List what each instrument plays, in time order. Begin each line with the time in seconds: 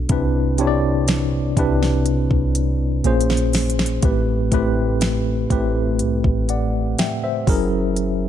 0.09 808-style bass C2, tine electric piano C3 C4 D4 E4 B4, kick, closed hi-hat
0.58 tine electric piano C3 C4 D4 E4 C#5, closed hi-hat
0.67 tine electric piano D5
1.08 snare, closed hi-hat
1.57 808-style bass C2, tine electric piano C3 C4 D4 E4 B4, kick, closed hi-hat
1.83 snare
2.06 closed hi-hat
2.31 808-style bass C2, kick
2.55 closed hi-hat
3.04 808-style bass A#1, tine electric piano A#2 A#3 C#4 G#4 C5, closed hi-hat
3.21 closed hi-hat
3.30 snare
3.37 closed hi-hat
3.53 snare, closed hi-hat, open hi-hat
3.70 closed hi-hat
3.79 snare
3.86 closed hi-hat
4.02 808-style bass A1, tine electric piano A2 A3 C4 G4 B4, kick, closed hi-hat
4.52 808-style bass A1, tine electric piano A2 A3 C4 G4 B4, kick, closed hi-hat
5.01 snare, closed hi-hat
5.50 808-style bass A1, tine electric piano A2 A3 C4 G4 B4, kick, closed hi-hat
5.99 808-style bass C2, closed hi-hat
6.24 808-style bass A1, kick
6.49 tine electric piano D5 F#5, closed hi-hat
6.99 tine electric piano E5 G5, snare, closed hi-hat
7.24 tine electric piano C5 E5
7.47 808-style bass F#1, tine electric piano F#3 C#4 E4 G#4 A#4, kick, open hi-hat
7.96 closed hi-hat